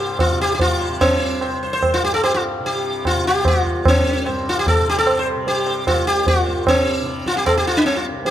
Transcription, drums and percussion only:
0.19 tabla na, tabla ge
0.40 tabla te
0.59 tabla tin, tabla ge
1.01 tabla na, tabla ge
1.41 tabla na
1.82 tabla na, tabla ge
2.24 tabla na
2.65 tabla tin
3.05 tabla na, tabla ge
3.25 tabla te
3.45 tabla na, tabla ge
3.65 tabla ge
3.85 tabla na, tabla ge
4.26 tabla na
4.67 tabla na, tabla ge
5.07 tabla na
5.27 tabla na
5.47 tabla tin
5.67 tabla na
5.87 tabla na, tabla ge
6.27 tabla tin, tabla ge
6.67 tabla na, tabla ge
7.06 tabla te
7.16 tabla te
7.26 tabla ke
7.36 tabla te
7.47 tabla na, tabla ge
7.85 tabla te
8.05 tabla te
8.25 tabla tin

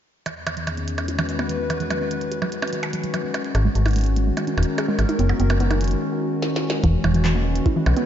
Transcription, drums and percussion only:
0.26 closed hi-hat, percussion blips
0.47 closed hi-hat, percussion blips
0.57 closed hi-hat
0.67 closed hi-hat, percussion blips
0.77 closed hi-hat
0.88 closed hi-hat
0.98 closed hi-hat, percussion blips
1.08 closed hi-hat
1.19 closed hi-hat, percussion blips
1.29 closed hi-hat
1.39 percussion blips
1.49 closed hi-hat
1.70 closed hi-hat, percussion blips
1.80 closed hi-hat
1.90 closed hi-hat, percussion blips
2.11 closed hi-hat
2.21 closed hi-hat
2.32 closed hi-hat
2.42 percussion blips
2.52 closed hi-hat
2.62 percussion blips
2.68 closed hi-hat
2.73 closed hi-hat
2.83 closed hi-hat, percussion blips
2.93 closed hi-hat
3.04 closed hi-hat
3.14 closed hi-hat, percussion blips
3.34 closed hi-hat, percussion blips
3.45 closed hi-hat
3.55 closed hi-hat, percussion blips
3.75 closed hi-hat
3.86 closed hi-hat, percussion blips
3.88 closed hi-hat
3.91 closed hi-hat
3.93 closed hi-hat
3.96 closed hi-hat
3.99 closed hi-hat
4.01 closed hi-hat
4.04 closed hi-hat
4.06 closed hi-hat
4.16 closed hi-hat
4.37 closed hi-hat, percussion blips
4.47 closed hi-hat
4.58 percussion blips
4.63 closed hi-hat
4.78 closed hi-hat, percussion blips
4.99 closed hi-hat, percussion blips
5.09 closed hi-hat
5.19 closed hi-hat
5.29 percussion blips
5.40 closed hi-hat
5.50 closed hi-hat, percussion blips
5.60 closed hi-hat
5.71 closed hi-hat, percussion blips
5.81 closed hi-hat
5.84 closed hi-hat
5.88 closed hi-hat
5.91 closed hi-hat
6.42 snare
6.56 snare
6.70 snare
6.84 kick, closed hi-hat
7.04 percussion blips
7.14 closed hi-hat
7.25 clap, closed hi-hat
7.56 closed hi-hat
7.66 kick, closed hi-hat
7.86 percussion blips
7.97 closed hi-hat

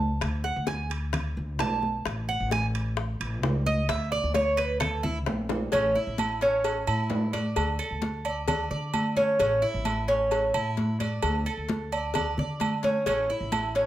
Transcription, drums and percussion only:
0.21 high bongo, high conga, high timbale
0.44 high bongo, high conga
0.67 high bongo, high conga, high timbale
0.90 high bongo, high conga, high timbale
1.13 high bongo, high conga, low conga, high timbale
1.36 high conga
1.59 high bongo, low bongo, high conga, high timbale, low timbale
1.83 high bongo, high conga
2.06 high bongo, high conga, high timbale
2.28 high conga
2.51 high bongo, high conga, high timbale
2.75 high conga, high timbale
2.97 high bongo, high conga
3.21 high conga, high timbale
3.43 high bongo, low bongo, high conga, low timbale
3.66 high conga
3.89 high bongo, high conga, high timbale
4.11 high bongo, high conga
4.34 high bongo, high conga, high timbale
4.58 high bongo, high conga, high timbale
4.81 high bongo, high conga, low conga, high timbale
5.04 high conga, low conga
5.26 high bongo, low bongo, high conga, high timbale
5.49 high bongo, high conga, low timbale
5.72 cowbell, high conga, low agogo
5.96 high conga
6.18 cowbell, high conga, low agogo
6.41 cowbell, high conga
6.64 cowbell, high conga, low agogo
6.87 high conga, low agogo
7.10 cowbell, high conga, low timbale
7.33 cowbell, high conga, low agogo
7.56 cowbell, low agogo
7.79 high conga, low agogo
8.02 cowbell, high conga
8.25 high conga, low agogo
8.48 cowbell, high conga, low conga, low agogo
8.71 high conga
8.94 cowbell, high conga, low agogo
9.16 cowbell, high conga
9.39 cowbell, high conga, low agogo
9.62 high conga
9.85 cowbell, high conga, low agogo
10.08 cowbell, high conga
10.31 cowbell, high conga, low agogo
10.54 high conga, low agogo
10.77 cowbell, high conga
11.00 cowbell, high conga, low agogo
11.22 cowbell, low agogo
11.46 high conga, low agogo
11.69 cowbell, high conga
11.92 high conga, low agogo
12.14 cowbell, high conga, low conga, low agogo
12.38 high conga, low conga
12.60 cowbell, high conga, low agogo
12.83 cowbell, high conga
13.06 cowbell, high conga, low agogo
13.29 high conga
13.52 cowbell, high conga, low agogo
13.75 cowbell, high conga

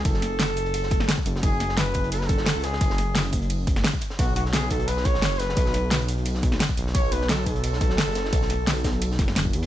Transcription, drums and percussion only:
0.05 kick, closed hi-hat, ride
0.14 snare
0.22 snare, closed hi-hat, ride
0.39 snare, closed hi-hat, ride
0.48 closed hi-hat
0.57 closed hi-hat, open hi-hat, ride
0.66 closed hi-hat
0.74 closed hi-hat, ride
0.83 snare
0.91 kick, closed hi-hat, ride
1.00 snare
1.09 snare, closed hi-hat, ride
1.17 kick, closed hi-hat
1.26 closed hi-hat, ride
1.36 snare
1.43 kick, closed hi-hat, ride
1.60 snare, closed hi-hat, ride
1.69 snare
1.77 snare, closed hi-hat, ride
1.94 kick, closed hi-hat, ride
2.04 closed hi-hat
2.12 closed hi-hat, ride
2.21 snare
2.29 kick, closed hi-hat, ride
2.38 snare
2.46 snare, closed hi-hat, open hi-hat, ride
2.64 snare, closed hi-hat, ride
2.73 snare
2.81 kick, closed hi-hat, ride
2.90 snare
2.98 snare, closed hi-hat, ride
3.15 snare, closed hi-hat, ride
3.25 closed hi-hat
3.33 kick, closed hi-hat, open hi-hat, ride
3.42 closed hi-hat
3.50 closed hi-hat, ride
3.67 kick, closed hi-hat, ride
3.76 snare
3.84 snare, closed hi-hat, ride
3.93 kick, closed hi-hat
4.01 closed hi-hat, ride
4.10 snare
4.19 kick, closed hi-hat, ride
4.36 snare, closed hi-hat, ride
4.46 snare
4.53 snare, closed hi-hat, ride
4.70 kick, closed hi-hat, ride
4.80 closed hi-hat
4.88 closed hi-hat, ride
4.97 snare
5.05 kick, closed hi-hat, ride
5.14 snare
5.22 snare, closed hi-hat, open hi-hat, ride
5.40 snare, closed hi-hat, ride
5.49 snare
5.57 kick, closed hi-hat, ride
5.66 snare
5.74 snare, closed hi-hat, ride
5.91 snare, closed hi-hat, ride
6.01 closed hi-hat
6.08 closed hi-hat, open hi-hat, ride
6.18 closed hi-hat
6.25 closed hi-hat, ride
6.35 snare
6.43 kick, closed hi-hat, ride
6.52 snare
6.60 snare, closed hi-hat, ride
6.69 kick, closed hi-hat
6.77 closed hi-hat, ride
6.87 snare
6.95 kick, closed hi-hat, ride
7.12 snare, closed hi-hat, ride
7.21 snare
7.29 snare, closed hi-hat, ride
7.46 kick, closed hi-hat, ride
7.56 closed hi-hat
7.63 closed hi-hat, ride
7.73 snare
7.81 kick, closed hi-hat, ride
7.90 snare
7.98 snare, closed hi-hat, open hi-hat, ride
8.15 snare, closed hi-hat, ride
8.25 snare
8.33 kick, closed hi-hat, ride
8.42 snare
8.50 snare, closed hi-hat, ride
8.67 snare, closed hi-hat, ride
8.77 closed hi-hat
8.84 kick, snare, closed hi-hat, open hi-hat, ride
8.93 closed hi-hat
9.02 closed hi-hat, ride
9.12 snare
9.19 kick, snare, closed hi-hat, ride
9.28 snare
9.36 snare, closed hi-hat, ride
9.45 kick
9.53 closed hi-hat, ride
9.63 closed hi-hat

